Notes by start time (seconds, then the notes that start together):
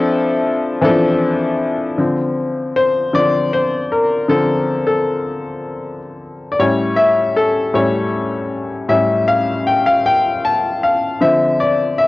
Already playing: F3 C4 D4 E4 A4 G5
0.81 E3 C4 D4 E4 A4
0.88 F3
1.98 D3 F3 C4
2.76 C5
3.13 D3 F3 C4 D5
3.53 C5
3.92 A#4
4.28 D3 F3 C4 A4
4.87 A4
6.52 D5
6.59 A2 G3 C#4 C#5
6.96 E5
7.36 A4
7.74 A2 G3 C#4 C#5
8.89 A2 G3 C#4 E5
9.28 F5
9.67 G5
9.86 F5
10.06 G5
10.45 A5
10.83 F5
11.21 D3 F3 C4 E5
11.60 D5
11.98 E5